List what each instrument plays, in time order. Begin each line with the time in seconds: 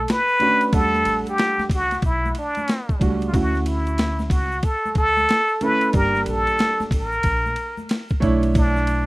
Already playing: muted trumpet A4
0.08 muted trumpet B4, snare, hi-hat pedal, ride, shaker
0.28 shaker
0.39 grand piano A3 C#4 D4 F#4, ride, low conga, shaker
0.61 ride, shaker
0.72 upright bass E2, grand piano F#3 A3 D4 F#5, muted trumpet A4, kick, ride, shaker
0.78 grand piano G3
0.94 snare, shaker
1.05 upright bass A1, ride, shaker
1.26 muted trumpet G4, ride, shaker
1.38 snare, hi-hat pedal, ride, shaker
1.58 muted upright bass stroke, snare, high conga, shaker
1.69 upright bass C#2, kick, ride, low conga, shaker
1.74 muted trumpet F#4
1.91 snare, ride, shaker
2.02 upright bass B1, muted trumpet E4, kick, ride, shaker
2.25 high conga, shaker
2.35 ride, shaker
2.39 muted trumpet D4
2.55 ride, high conga, shaker
2.68 snare, hi-hat pedal, ride, shaker
2.89 kick, shaker
3.00 upright bass C#2, grand piano G3 A3 D4 F#4, kick, ride, low conga, shaker
3.21 ride, shaker
3.28 muted trumpet F4
3.33 upright bass D2, grand piano A3 C#4 E4 F#4, muted trumpet F#4, kick, ride, shaker
3.54 snare, shaker
3.66 muted trumpet E4, ride, shaker
3.86 ride, shaker
3.98 snare, hi-hat pedal, ride, shaker
4.19 snare, high conga, shaker
4.30 upright bass C#2, muted trumpet F#4, kick, ride, low conga, shaker
4.51 shaker
4.63 muted trumpet A4, kick, ride, shaker
4.85 high conga, shaker
4.95 upright bass D2, muted trumpet A4, kick, ride, shaker
5.17 high conga, shaker
5.28 snare, hi-hat pedal, ride, shaker
5.48 shaker
5.61 grand piano A3 C#4 E4 A4, muted trumpet B4, ride, low conga, shaker
5.81 ride, shaker
5.93 upright bass G1, grand piano G3 A#3 D4 G4, muted trumpet A#4, kick, ride, shaker
6.15 snare, shaker
6.26 upright bass A#1, muted trumpet A4, ride, shaker
6.47 ride, shaker
6.58 snare, hi-hat pedal, ride, shaker
6.80 muted upright bass stroke, snare, high conga, shaker
6.91 upright bass A1, muted trumpet A#4, kick, ride, low conga, shaker
7.11 shaker
7.23 upright bass A#1, kick, ride, shaker
7.46 high conga, shaker
7.56 ride, shaker
7.77 high conga, shaker
7.89 snare, hi-hat pedal, ride, shaker
8.09 kick, shaker
8.20 upright bass B1, grand piano A3 D4 E4 C#5, kick, ride, low conga, shaker
8.42 ride, shaker
8.54 muted trumpet D4, kick, ride, shaker
8.76 snare, shaker
8.87 ride, shaker